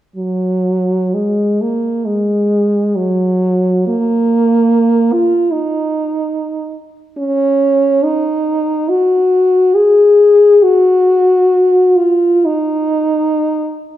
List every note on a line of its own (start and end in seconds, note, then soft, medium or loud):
0.16 1.16 F#3 soft
1.14 1.63 G#3 soft
1.61 2.07 A#3 soft
2.06 2.97 G#3 soft
2.96 3.87 F#3 soft
3.87 5.14 A#3 soft
5.13 5.53 F4 soft
5.51 6.78 D#4 soft
7.18 8.06 C#4 medium
8.05 8.91 D#4 soft
8.89 9.76 F#4 medium
9.75 10.64 G#4 medium
10.63 11.98 F#4 medium
11.96 12.47 F4 soft
12.45 13.87 D#4 medium